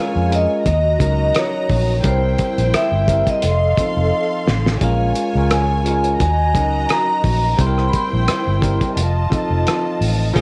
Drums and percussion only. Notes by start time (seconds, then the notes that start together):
0.32 closed hi-hat
0.66 kick, closed hi-hat
1.00 kick, closed hi-hat
1.35 cross-stick, closed hi-hat
1.69 kick, open hi-hat
2.04 kick, closed hi-hat
2.38 kick, closed hi-hat
2.58 closed hi-hat
2.74 cross-stick, closed hi-hat
3.08 kick, closed hi-hat
3.27 kick, closed hi-hat
3.42 closed hi-hat
3.77 kick, closed hi-hat
4.48 snare
4.66 snare
4.81 kick, closed hi-hat
5.15 closed hi-hat
5.51 cross-stick, closed hi-hat
5.86 closed hi-hat
6.04 closed hi-hat
6.20 kick, closed hi-hat
6.55 kick, closed hi-hat
6.89 cross-stick, closed hi-hat
7.24 kick, open hi-hat
7.59 kick, closed hi-hat
7.78 cross-stick
7.93 kick, closed hi-hat
8.28 cross-stick, closed hi-hat
8.62 kick, closed hi-hat
8.81 kick, closed hi-hat
8.97 closed hi-hat
9.32 kick, closed hi-hat
9.67 cross-stick, closed hi-hat
10.02 open hi-hat
10.36 kick, closed hi-hat